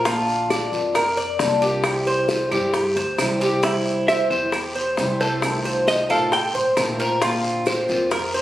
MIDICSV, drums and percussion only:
0, 0, Header, 1, 2, 480
1, 0, Start_track
1, 0, Tempo, 447427
1, 57, Time_signature, 4, 2, 24, 8
1, 9030, End_track
2, 0, Start_track
2, 0, Title_t, "Drums"
2, 58, Note_on_c, 9, 60, 73
2, 58, Note_on_c, 9, 70, 73
2, 59, Note_on_c, 9, 74, 72
2, 165, Note_off_c, 9, 60, 0
2, 166, Note_off_c, 9, 70, 0
2, 166, Note_off_c, 9, 74, 0
2, 302, Note_on_c, 9, 70, 27
2, 409, Note_off_c, 9, 70, 0
2, 540, Note_on_c, 9, 75, 62
2, 541, Note_on_c, 9, 60, 65
2, 543, Note_on_c, 9, 73, 71
2, 545, Note_on_c, 9, 70, 64
2, 648, Note_off_c, 9, 60, 0
2, 648, Note_off_c, 9, 75, 0
2, 650, Note_off_c, 9, 73, 0
2, 652, Note_off_c, 9, 70, 0
2, 782, Note_on_c, 9, 70, 28
2, 784, Note_on_c, 9, 73, 70
2, 889, Note_off_c, 9, 70, 0
2, 891, Note_off_c, 9, 73, 0
2, 1016, Note_on_c, 9, 74, 76
2, 1020, Note_on_c, 9, 60, 68
2, 1020, Note_on_c, 9, 75, 68
2, 1022, Note_on_c, 9, 70, 66
2, 1123, Note_off_c, 9, 74, 0
2, 1127, Note_off_c, 9, 60, 0
2, 1128, Note_off_c, 9, 75, 0
2, 1130, Note_off_c, 9, 70, 0
2, 1260, Note_on_c, 9, 70, 31
2, 1367, Note_off_c, 9, 70, 0
2, 1495, Note_on_c, 9, 60, 65
2, 1495, Note_on_c, 9, 61, 70
2, 1500, Note_on_c, 9, 70, 72
2, 1501, Note_on_c, 9, 73, 64
2, 1602, Note_off_c, 9, 60, 0
2, 1602, Note_off_c, 9, 61, 0
2, 1607, Note_off_c, 9, 70, 0
2, 1608, Note_off_c, 9, 73, 0
2, 1738, Note_on_c, 9, 70, 31
2, 1739, Note_on_c, 9, 73, 69
2, 1845, Note_off_c, 9, 70, 0
2, 1846, Note_off_c, 9, 73, 0
2, 1970, Note_on_c, 9, 60, 71
2, 1972, Note_on_c, 9, 74, 73
2, 1974, Note_on_c, 9, 70, 66
2, 1976, Note_on_c, 9, 75, 64
2, 2077, Note_off_c, 9, 60, 0
2, 2079, Note_off_c, 9, 74, 0
2, 2081, Note_off_c, 9, 70, 0
2, 2083, Note_off_c, 9, 75, 0
2, 2212, Note_on_c, 9, 60, 37
2, 2219, Note_on_c, 9, 70, 29
2, 2319, Note_off_c, 9, 60, 0
2, 2327, Note_off_c, 9, 70, 0
2, 2452, Note_on_c, 9, 60, 60
2, 2455, Note_on_c, 9, 73, 73
2, 2458, Note_on_c, 9, 70, 64
2, 2559, Note_off_c, 9, 60, 0
2, 2562, Note_off_c, 9, 73, 0
2, 2565, Note_off_c, 9, 70, 0
2, 2691, Note_on_c, 9, 60, 34
2, 2698, Note_on_c, 9, 75, 66
2, 2700, Note_on_c, 9, 73, 69
2, 2701, Note_on_c, 9, 70, 27
2, 2799, Note_off_c, 9, 60, 0
2, 2805, Note_off_c, 9, 75, 0
2, 2807, Note_off_c, 9, 73, 0
2, 2808, Note_off_c, 9, 70, 0
2, 2936, Note_on_c, 9, 60, 73
2, 2936, Note_on_c, 9, 70, 64
2, 2941, Note_on_c, 9, 74, 75
2, 3043, Note_off_c, 9, 60, 0
2, 3044, Note_off_c, 9, 70, 0
2, 3048, Note_off_c, 9, 74, 0
2, 3175, Note_on_c, 9, 60, 37
2, 3178, Note_on_c, 9, 70, 29
2, 3282, Note_off_c, 9, 60, 0
2, 3285, Note_off_c, 9, 70, 0
2, 3417, Note_on_c, 9, 60, 63
2, 3417, Note_on_c, 9, 61, 70
2, 3418, Note_on_c, 9, 73, 64
2, 3419, Note_on_c, 9, 70, 77
2, 3419, Note_on_c, 9, 75, 69
2, 3524, Note_off_c, 9, 60, 0
2, 3524, Note_off_c, 9, 61, 0
2, 3525, Note_off_c, 9, 73, 0
2, 3526, Note_off_c, 9, 75, 0
2, 3527, Note_off_c, 9, 70, 0
2, 3653, Note_on_c, 9, 73, 64
2, 3661, Note_on_c, 9, 70, 29
2, 3760, Note_off_c, 9, 73, 0
2, 3769, Note_off_c, 9, 70, 0
2, 3898, Note_on_c, 9, 74, 80
2, 3900, Note_on_c, 9, 60, 69
2, 3900, Note_on_c, 9, 70, 68
2, 4006, Note_off_c, 9, 74, 0
2, 4007, Note_off_c, 9, 60, 0
2, 4007, Note_off_c, 9, 70, 0
2, 4143, Note_on_c, 9, 70, 27
2, 4251, Note_off_c, 9, 70, 0
2, 4379, Note_on_c, 9, 75, 69
2, 4381, Note_on_c, 9, 60, 62
2, 4383, Note_on_c, 9, 73, 74
2, 4388, Note_on_c, 9, 70, 66
2, 4486, Note_off_c, 9, 75, 0
2, 4489, Note_off_c, 9, 60, 0
2, 4490, Note_off_c, 9, 73, 0
2, 4495, Note_off_c, 9, 70, 0
2, 4623, Note_on_c, 9, 73, 73
2, 4627, Note_on_c, 9, 70, 30
2, 4730, Note_off_c, 9, 73, 0
2, 4735, Note_off_c, 9, 70, 0
2, 4853, Note_on_c, 9, 60, 76
2, 4860, Note_on_c, 9, 75, 62
2, 4862, Note_on_c, 9, 70, 68
2, 4866, Note_on_c, 9, 74, 75
2, 4960, Note_off_c, 9, 60, 0
2, 4967, Note_off_c, 9, 75, 0
2, 4969, Note_off_c, 9, 70, 0
2, 4974, Note_off_c, 9, 74, 0
2, 5107, Note_on_c, 9, 70, 28
2, 5215, Note_off_c, 9, 70, 0
2, 5336, Note_on_c, 9, 60, 64
2, 5336, Note_on_c, 9, 61, 80
2, 5343, Note_on_c, 9, 73, 63
2, 5346, Note_on_c, 9, 70, 74
2, 5443, Note_off_c, 9, 60, 0
2, 5443, Note_off_c, 9, 61, 0
2, 5450, Note_off_c, 9, 73, 0
2, 5454, Note_off_c, 9, 70, 0
2, 5585, Note_on_c, 9, 73, 67
2, 5589, Note_on_c, 9, 70, 29
2, 5693, Note_off_c, 9, 73, 0
2, 5696, Note_off_c, 9, 70, 0
2, 5818, Note_on_c, 9, 60, 67
2, 5823, Note_on_c, 9, 74, 74
2, 5823, Note_on_c, 9, 75, 60
2, 5826, Note_on_c, 9, 70, 70
2, 5925, Note_off_c, 9, 60, 0
2, 5930, Note_off_c, 9, 75, 0
2, 5931, Note_off_c, 9, 74, 0
2, 5933, Note_off_c, 9, 70, 0
2, 6062, Note_on_c, 9, 60, 37
2, 6072, Note_on_c, 9, 70, 31
2, 6169, Note_off_c, 9, 60, 0
2, 6180, Note_off_c, 9, 70, 0
2, 6304, Note_on_c, 9, 60, 61
2, 6306, Note_on_c, 9, 73, 72
2, 6308, Note_on_c, 9, 70, 67
2, 6411, Note_off_c, 9, 60, 0
2, 6413, Note_off_c, 9, 73, 0
2, 6415, Note_off_c, 9, 70, 0
2, 6542, Note_on_c, 9, 60, 33
2, 6546, Note_on_c, 9, 75, 63
2, 6549, Note_on_c, 9, 70, 28
2, 6552, Note_on_c, 9, 73, 70
2, 6650, Note_off_c, 9, 60, 0
2, 6653, Note_off_c, 9, 75, 0
2, 6656, Note_off_c, 9, 70, 0
2, 6660, Note_off_c, 9, 73, 0
2, 6781, Note_on_c, 9, 60, 67
2, 6787, Note_on_c, 9, 70, 67
2, 6793, Note_on_c, 9, 74, 82
2, 6888, Note_off_c, 9, 60, 0
2, 6894, Note_off_c, 9, 70, 0
2, 6900, Note_off_c, 9, 74, 0
2, 7019, Note_on_c, 9, 60, 35
2, 7028, Note_on_c, 9, 70, 32
2, 7126, Note_off_c, 9, 60, 0
2, 7135, Note_off_c, 9, 70, 0
2, 7261, Note_on_c, 9, 75, 68
2, 7262, Note_on_c, 9, 60, 63
2, 7262, Note_on_c, 9, 61, 76
2, 7262, Note_on_c, 9, 70, 79
2, 7266, Note_on_c, 9, 73, 65
2, 7368, Note_off_c, 9, 75, 0
2, 7369, Note_off_c, 9, 60, 0
2, 7369, Note_off_c, 9, 61, 0
2, 7369, Note_off_c, 9, 70, 0
2, 7373, Note_off_c, 9, 73, 0
2, 7501, Note_on_c, 9, 70, 29
2, 7507, Note_on_c, 9, 73, 72
2, 7609, Note_off_c, 9, 70, 0
2, 7615, Note_off_c, 9, 73, 0
2, 7742, Note_on_c, 9, 60, 69
2, 7742, Note_on_c, 9, 70, 70
2, 7747, Note_on_c, 9, 74, 82
2, 7849, Note_off_c, 9, 60, 0
2, 7850, Note_off_c, 9, 70, 0
2, 7854, Note_off_c, 9, 74, 0
2, 7985, Note_on_c, 9, 70, 33
2, 8092, Note_off_c, 9, 70, 0
2, 8214, Note_on_c, 9, 70, 68
2, 8225, Note_on_c, 9, 60, 63
2, 8226, Note_on_c, 9, 73, 80
2, 8226, Note_on_c, 9, 75, 70
2, 8321, Note_off_c, 9, 70, 0
2, 8332, Note_off_c, 9, 60, 0
2, 8333, Note_off_c, 9, 73, 0
2, 8333, Note_off_c, 9, 75, 0
2, 8459, Note_on_c, 9, 70, 29
2, 8471, Note_on_c, 9, 73, 66
2, 8567, Note_off_c, 9, 70, 0
2, 8579, Note_off_c, 9, 73, 0
2, 8700, Note_on_c, 9, 70, 68
2, 8706, Note_on_c, 9, 60, 72
2, 8706, Note_on_c, 9, 74, 80
2, 8706, Note_on_c, 9, 75, 61
2, 8807, Note_off_c, 9, 70, 0
2, 8813, Note_off_c, 9, 60, 0
2, 8813, Note_off_c, 9, 74, 0
2, 8813, Note_off_c, 9, 75, 0
2, 8945, Note_on_c, 9, 70, 34
2, 9030, Note_off_c, 9, 70, 0
2, 9030, End_track
0, 0, End_of_file